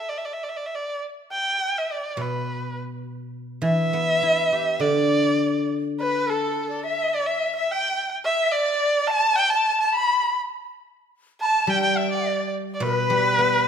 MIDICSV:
0, 0, Header, 1, 4, 480
1, 0, Start_track
1, 0, Tempo, 597610
1, 85, Time_signature, 2, 2, 24, 8
1, 1525, Tempo, 583658
1, 4885, Tempo, 569260
1, 11373, End_track
2, 0, Start_track
2, 0, Title_t, "Dizi"
2, 0, Program_c, 0, 73
2, 4891, Note_on_c, 0, 74, 62
2, 4924, Note_on_c, 0, 71, 67
2, 4933, Note_off_c, 0, 74, 0
2, 5123, Note_on_c, 0, 69, 69
2, 5135, Note_off_c, 0, 71, 0
2, 5475, Note_off_c, 0, 69, 0
2, 5480, Note_on_c, 0, 74, 65
2, 5605, Note_on_c, 0, 76, 67
2, 5617, Note_off_c, 0, 74, 0
2, 5854, Note_on_c, 0, 74, 71
2, 5866, Note_off_c, 0, 76, 0
2, 5968, Note_off_c, 0, 74, 0
2, 5976, Note_on_c, 0, 76, 67
2, 6192, Note_off_c, 0, 76, 0
2, 6217, Note_on_c, 0, 76, 73
2, 6322, Note_off_c, 0, 76, 0
2, 6335, Note_on_c, 0, 79, 70
2, 6660, Note_off_c, 0, 79, 0
2, 6805, Note_on_c, 0, 76, 82
2, 7056, Note_on_c, 0, 74, 85
2, 7069, Note_off_c, 0, 76, 0
2, 7515, Note_on_c, 0, 81, 87
2, 7528, Note_off_c, 0, 74, 0
2, 7759, Note_on_c, 0, 79, 92
2, 7771, Note_off_c, 0, 81, 0
2, 7874, Note_off_c, 0, 79, 0
2, 7879, Note_on_c, 0, 81, 89
2, 8100, Note_off_c, 0, 81, 0
2, 8132, Note_on_c, 0, 81, 85
2, 8246, Note_on_c, 0, 83, 77
2, 8259, Note_off_c, 0, 81, 0
2, 8608, Note_off_c, 0, 83, 0
2, 9469, Note_on_c, 0, 83, 75
2, 9499, Note_on_c, 0, 81, 82
2, 9507, Note_off_c, 0, 83, 0
2, 9715, Note_on_c, 0, 79, 83
2, 9728, Note_off_c, 0, 81, 0
2, 9829, Note_off_c, 0, 79, 0
2, 9839, Note_on_c, 0, 79, 74
2, 10085, Note_on_c, 0, 74, 69
2, 10098, Note_off_c, 0, 79, 0
2, 10428, Note_off_c, 0, 74, 0
2, 10663, Note_on_c, 0, 70, 83
2, 10756, Note_off_c, 0, 70, 0
2, 10756, Note_on_c, 0, 71, 83
2, 11373, Note_off_c, 0, 71, 0
2, 11373, End_track
3, 0, Start_track
3, 0, Title_t, "Erhu"
3, 0, Program_c, 1, 110
3, 0, Note_on_c, 1, 76, 72
3, 72, Note_on_c, 1, 74, 65
3, 84, Note_off_c, 1, 76, 0
3, 142, Note_on_c, 1, 76, 63
3, 154, Note_off_c, 1, 74, 0
3, 200, Note_on_c, 1, 74, 60
3, 212, Note_off_c, 1, 76, 0
3, 263, Note_on_c, 1, 76, 60
3, 275, Note_off_c, 1, 74, 0
3, 346, Note_on_c, 1, 74, 58
3, 358, Note_off_c, 1, 76, 0
3, 394, Note_on_c, 1, 76, 56
3, 406, Note_off_c, 1, 74, 0
3, 455, Note_on_c, 1, 74, 55
3, 467, Note_off_c, 1, 76, 0
3, 529, Note_on_c, 1, 76, 57
3, 541, Note_off_c, 1, 74, 0
3, 601, Note_on_c, 1, 74, 64
3, 613, Note_off_c, 1, 76, 0
3, 800, Note_off_c, 1, 74, 0
3, 1057, Note_on_c, 1, 79, 86
3, 1428, Note_on_c, 1, 76, 71
3, 1440, Note_off_c, 1, 79, 0
3, 1542, Note_on_c, 1, 74, 64
3, 1555, Note_off_c, 1, 76, 0
3, 1784, Note_on_c, 1, 71, 61
3, 1796, Note_off_c, 1, 74, 0
3, 2252, Note_off_c, 1, 71, 0
3, 2948, Note_on_c, 1, 76, 104
3, 3917, Note_on_c, 1, 74, 85
3, 3929, Note_off_c, 1, 76, 0
3, 4646, Note_off_c, 1, 74, 0
3, 4901, Note_on_c, 1, 71, 89
3, 5145, Note_on_c, 1, 69, 78
3, 5157, Note_off_c, 1, 71, 0
3, 5613, Note_off_c, 1, 69, 0
3, 5618, Note_on_c, 1, 76, 81
3, 5865, Note_on_c, 1, 74, 92
3, 5877, Note_off_c, 1, 76, 0
3, 5964, Note_on_c, 1, 76, 75
3, 5977, Note_off_c, 1, 74, 0
3, 6203, Note_off_c, 1, 76, 0
3, 6211, Note_on_c, 1, 76, 78
3, 6344, Note_on_c, 1, 79, 86
3, 6356, Note_off_c, 1, 76, 0
3, 6689, Note_off_c, 1, 79, 0
3, 6792, Note_on_c, 1, 76, 108
3, 7020, Note_on_c, 1, 74, 97
3, 7033, Note_off_c, 1, 76, 0
3, 7488, Note_on_c, 1, 81, 102
3, 7501, Note_off_c, 1, 74, 0
3, 7731, Note_on_c, 1, 79, 108
3, 7743, Note_off_c, 1, 81, 0
3, 7850, Note_on_c, 1, 81, 93
3, 7863, Note_off_c, 1, 79, 0
3, 8100, Note_off_c, 1, 81, 0
3, 8105, Note_on_c, 1, 81, 88
3, 8219, Note_off_c, 1, 81, 0
3, 8224, Note_on_c, 1, 83, 89
3, 8571, Note_off_c, 1, 83, 0
3, 9459, Note_on_c, 1, 81, 96
3, 9700, Note_on_c, 1, 79, 105
3, 9713, Note_off_c, 1, 81, 0
3, 9807, Note_off_c, 1, 79, 0
3, 9812, Note_on_c, 1, 79, 79
3, 9933, Note_on_c, 1, 76, 81
3, 9946, Note_off_c, 1, 79, 0
3, 10045, Note_off_c, 1, 76, 0
3, 10050, Note_on_c, 1, 74, 75
3, 10385, Note_off_c, 1, 74, 0
3, 10585, Note_on_c, 1, 74, 64
3, 10651, Note_on_c, 1, 71, 102
3, 10664, Note_off_c, 1, 74, 0
3, 11373, Note_off_c, 1, 71, 0
3, 11373, End_track
4, 0, Start_track
4, 0, Title_t, "Guzheng"
4, 0, Program_c, 2, 107
4, 1748, Note_on_c, 2, 47, 46
4, 2937, Note_on_c, 2, 52, 51
4, 2948, Note_off_c, 2, 47, 0
4, 3198, Note_on_c, 2, 59, 42
4, 3437, Note_on_c, 2, 64, 38
4, 3683, Note_on_c, 2, 67, 35
4, 3908, Note_on_c, 2, 50, 46
4, 4161, Note_off_c, 2, 59, 0
4, 4393, Note_off_c, 2, 52, 0
4, 4404, Note_off_c, 2, 64, 0
4, 4649, Note_off_c, 2, 67, 0
4, 5364, Note_off_c, 2, 50, 0
4, 9681, Note_on_c, 2, 55, 55
4, 10634, Note_on_c, 2, 47, 59
4, 10873, Note_off_c, 2, 55, 0
4, 10883, Note_on_c, 2, 55, 53
4, 11125, Note_on_c, 2, 59, 50
4, 11373, Note_off_c, 2, 47, 0
4, 11373, Note_off_c, 2, 55, 0
4, 11373, Note_off_c, 2, 59, 0
4, 11373, End_track
0, 0, End_of_file